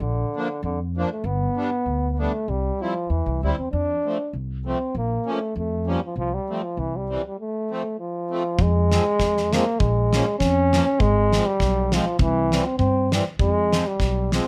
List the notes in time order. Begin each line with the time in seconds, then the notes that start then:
0.00 A#1 D3
0.36 F3 A#3 D4
0.63 F2 D3
0.97 F3 A#3 D4
1.12 A3
1.24 G1 B3
1.57 G3 B3 D4
1.86 D2
2.11 B3
2.19 G3 A3 B3 D4
2.48 C2 G3
2.81 F3 G3 C4 E4
3.10 E2 E3
3.26 C2
3.43 D2 G3 C4 E4
3.58 E2 C4
3.72 F2 D4
4.05 F3 A3 C4
4.33 C2
4.65 F3 A3 C4
4.95 A#1 A#3
5.26 F3 A#3 C#4
5.31 A3
5.56 F2 A3
5.86 F3 A#3 C#4
5.91 G3
6.05 F3
6.16 C2 F3
6.34 G3
6.49 F3 A3 C4
6.63 F3
6.77 C2 E3
6.96 G3
7.09 E3 G3 C4
7.27 G3
7.40 A3
7.71 F3 A3 C4
8.00 F3
8.31 F3 A3 C4
8.59 F2 G#3, kick
8.91 F3 G#3 C4, snare
9.19 F2, kick, snare
9.37 snare
9.52 F3 G#3 A#3 C4, snare
9.80 A#1 G#3, kick
10.13 F3 A#3 C#4, snare
10.39 F2 C#4, kick, snare
10.73 F3 A#3 C#4, snare
11.00 G#1 G#3, kick
11.33 F3 G#3 C4, snare
11.46 G3
11.60 B1, kick, snare
11.92 F3 G#3 C4, snare
12.19 C2 E3, kick
12.52 E3 G3 C4, snare
12.66 C4
12.78 G2 C4, kick
13.12 E3 G3 C4, snare
13.39 F2 G#3, kick
13.73 F3 G#3 C4, snare
13.87 G3
14.00 B1, kick, snare
14.32 F3 G#3 C4, snare